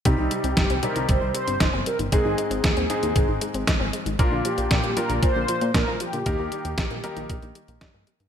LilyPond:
<<
  \new Staff \with { instrumentName = "Analog polysynth" } { \time 4/4 \key c \minor \tempo 4 = 116 ees'8 g'8 g'8 bes'8 c''8 c''4 bes'8 | aes'4 aes'2~ aes'8 r8 | f'8 g'8 g'8 bes'8 c''4 bes'8 g'8~ | g'2.~ g'8 r8 | }
  \new Staff \with { instrumentName = "Grand piano" } { \time 4/4 \key c \minor <c g c' ees' g'>4. <c g c' ees' g'>2~ <c g c' ees' g'>8 | <aes, aes c' ees' aes'>4. <aes, aes c' ees' aes'>2~ <aes, aes c' ees' aes'>8 | <bes, bes d' f' bes'>4. <bes, bes d' f' bes'>2~ <bes, bes d' f' bes'>8 | <ees bes ees' g' bes'>4. <ees bes ees' g' bes'>2~ <ees bes ees' g' bes'>8 | }
  \new Staff \with { instrumentName = "Synth arpeggio sound" } { \clef bass \time 4/4 \key c \minor c16 ees16 g16 c'16 ees'16 c'16 g16 ees16 c16 ees16 g16 c'16 ees'16 c'16 g16 ees16 | c16 ees16 aes16 c'16 ees'16 c'16 aes16 ees16 c16 ees16 aes16 c'16 ees'16 c'16 aes16 ees16 | bes,16 d16 f16 bes16 d'16 bes16 f16 d16 bes,16 d16 f16 bes16 d'16 bes16 f16 d16 | bes,16 ees16 g16 bes16 ees'16 bes16 g16 ees16 bes,16 ees16 g16 bes16 ees'16 bes16 g16 ees16 | }
  \new Staff \with { instrumentName = "Analog synth bass" } { \clef bass \time 4/4 \key c \minor c,16 c,16 r16 c,16 g,,16 c,16 r16 c,16 g,,16 c,16 r16 g,,16 g,,16 g,,16 r16 g,,16 | aes,,16 aes,,16 r16 aes,,16 ees,16 ees,16 r16 ees,16 aes,,16 aes,,16 r16 aes,,16 aes,,16 aes,,16 r16 aes,,16 | bes,,16 bes,,16 r16 bes,,16 bes,16 bes,,16 r16 bes,,16 bes,16 bes,,16 r16 bes,16 bes,16 bes,16 r16 bes,16 | ees,16 ees,16 r16 ees,16 bes,,16 bes,,16 r16 bes,,16 bes,,16 bes,,16 r16 bes,,16 g,16 g,16 r16 g,16 | }
  \new DrumStaff \with { instrumentName = "Drums" } \drummode { \time 4/4 <hh bd>8 hh16 hh16 <hh bd sn>16 hh16 hh16 hh16 <hh bd>8 hh16 hh16 <hh bd sn>8 hh16 hh16 | <hh bd>8 hh16 hh16 <hh bd sn>16 hh16 hh16 hh16 <hh bd>8 hh16 hh16 <hh bd sn>8 hh16 hh16 | <hh bd>8 hh16 hh16 <hh bd sn>16 hh16 hh16 hh16 <hh bd>8 hh16 hh16 <hh bd sn>8 hh16 hh16 | <hh bd>8 hh16 hh16 <hh bd sn>16 hh16 hh16 hh16 <hh bd>16 hh16 hh16 hh16 <hh bd sn>8 hh16 hh16 | }
>>